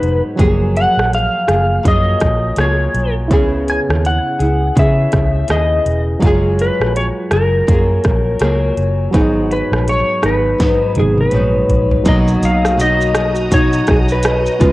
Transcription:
Already playing: G#2 F#3 B3 D#4 G#4 B4
0.02 F1, closed hi-hat
0.36 F#1 F3 F#3 A#3 G#4, kick, closed hi-hat
0.41 G4
0.47 G#4
0.76 F#5, closed hi-hat
0.97 A#1, cross-stick
1.13 F5, closed hi-hat
1.47 F#1 A#3 F4 G#4, cross-stick, closed hi-hat
1.83 F#2 F#3 A#3 F4, kick, closed hi-hat
1.87 G#4 D#5
2.20 A#1, kick, cross-stick, closed hi-hat
2.56 C#2 F#3 A#3 F4, cross-stick, closed hi-hat
2.61 G#4 C#5
2.94 B1, closed hi-hat
3.28 C#2 C#3 B3 C#4 E4, kick, closed hi-hat
3.32 E4 G#4
3.68 G#5, closed hi-hat
3.89 D#2, cross-stick
4.05 F#5, closed hi-hat
4.39 C#2 B3 E4 G#4, closed hi-hat
4.75 C#3 B3 E4 E5, kick, closed hi-hat
4.79 G#4
5.12 C#2, kick, cross-stick, closed hi-hat
5.48 D#2 C#3 B3 E4 G#4 D#5, cross-stick, closed hi-hat
5.86 E1, closed hi-hat
6.19 F#1 F#3 G#3 F4, kick, closed hi-hat
6.24 F4 G#4
6.59 B4, closed hi-hat
6.80 A#1, cross-stick
6.96 C#5, closed hi-hat
7.31 F#1 A#4, cross-stick, closed hi-hat
7.67 F#2 F#3 A#3 F4, kick, closed hi-hat
7.71 G#4
8.04 A#1, kick, cross-stick, closed hi-hat
8.40 C#2 F#3 A#3 F4, cross-stick, closed hi-hat
8.44 G#4
8.77 F#1, closed hi-hat
9.11 G#1 G#2 F#3 B3 D#4, kick, closed hi-hat
9.15 D#4 G#4
9.51 B4, closed hi-hat
9.72 A#1, cross-stick
9.88 C#5, closed hi-hat
10.22 G#1 B3 D#4 B4, cross-stick, closed hi-hat
10.26 F#3
10.59 G#2 F#3 B3, kick, snare, closed hi-hat
10.63 D#4
10.95 G#1 F#3 A#3 D#4 G#4, closed hi-hat, high tom
11.00 B3 G#4
11.18 B4, high tom
11.31 A#1 G#2 F#3 B3, closed hi-hat
11.35 D#4
11.69 A#1, closed hi-hat, floor tom
11.91 floor tom
12.04 B1 B2 F#3 A#3 B3 D#4 F#4 D#5 A#5 D#6, kick, closed hi-hat, shaker
12.08 D#4 D#5 A#5
12.28 shaker
12.42 B1 F5, closed hi-hat, shaker
12.65 cross-stick, shaker
12.77 B2 F#3 A#3 D#5, closed hi-hat, shaker
12.82 D#4
13.01 shaker
13.15 cross-stick, closed hi-hat, shaker
13.35 shaker
13.51 B2 F#3 D#4 C#5, kick, closed hi-hat, shaker
13.73 shaker
13.87 B1 G#4, kick, cross-stick, closed hi-hat, shaker
14.09 B4, shaker
14.23 cross-stick, closed hi-hat, shaker
14.46 shaker
14.59 C#2 C#3 G#3 B3 C#4 F4 F5 G#5 C#6, kick, closed hi-hat, shaker
14.64 B4

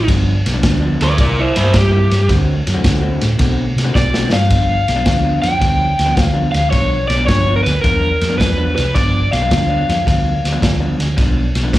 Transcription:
0.07 G1 G2 F3 B3 D4, kick, snare, ride
0.46 B1, snare, ride
0.54 G2 F3 B3 D4
0.63 D2 G2 F3 B3 D4, kick, snare, ride
0.80 G2 F3 B3 D4
1.01 D2 B4 D5, snare, ride
1.17 C2 C3 G3 A#3 E4 A#4, kick, snare, ride
1.21 D5
1.40 E4 C5
1.56 G2 E4 C5, snare, ride
1.64 C3 G3 A#3 E4
1.74 G2 G4, kick, snare, ride
1.91 C3 G3 A#3 E4
2.11 G2, muted clean electric guitar stroke, snare, ride
2.29 D2 D3 A3 C4 F#4, kick, snare, ride
2.67 F#2, snare, ride
2.74 D3 A3 C4 F#4
2.83 D2 D3 A3 C4 F#4, kick, snare, ride
3.01 D3 A3 C4 F#4
3.21 A2, snare, ride
3.39 B2 D3 A3 C4 F#4, kick, snare, ride
3.76 C3, snare, ride
3.85 D3 A3 C4 F#4
3.95 B2 D5, kick, snare
4.14 D3 A3 C4 F#4, snare
4.31 G2 F5, muted clean electric guitar stroke, snare
4.49 G1 G2 F3 B3 D4, kick, snare, ride
4.88 B1, snare, ride
4.96 G2 F3 B3 D4
5.04 D2 G2 F3 B3 D4, kick, snare, ride
5.23 G2 F3 B3 D4
5.42 F2 G5, snare, ride
5.60 D2 G2 F3 B3 D4, kick, snare, ride
5.99 D2, snare, ride
6.06 G2 F3 B3 D4
6.17 D2, kick, snare, ride
6.22 F5
6.34 G2 F3 B3 D4
6.52 D2 F5, muted clean electric guitar stroke, snare, ride
6.71 B1 G2 F3 B3 D4 C#5, kick, snare, ride
7.08 B1 D5, snare, ride
7.17 G2 F3 B3 D4
7.27 G1 G2 F3 B3 D4 C#5, kick, snare, ride
7.46 G2 F3 B3 D4
7.56 A#4
7.63 D2 B4, snare, ride
7.81 E2 G2 F3 B3 D4 A#4, kick, snare, ride
8.21 F2, snare, ride
8.30 G2 F3 B3 D4
8.38 E2 B4, kick, snare, ride
8.57 G2 F3 B3 D4
8.76 C2 B4, muted clean electric guitar stroke, snare, ride
8.94 G1 G2 F3 B3 D4 D5, kick, snare, ride
9.32 B1 F5, snare, ride
9.42 G2 F3 B3 D4
9.51 D2 G2 F3 B3 D4, kick, snare, ride
9.69 G2 F3 B3 D4
9.89 F2, snare, ride
10.06 D2 G2 F3 B3 D4, kick, snare, ride
10.44 D2, snare, ride
10.52 G2 F3 B3 D4
10.62 D2, kick, snare, ride
10.80 G2 F3 B3 D4
10.99 D2, muted clean electric guitar stroke, snare, ride
11.17 B1 G2 F3 B3 D4, kick, snare, ride
11.55 B1, snare, ride
11.64 G2 F3 B3 D4
11.73 G1 G2 F3 B3 D4, kick, snare, ride

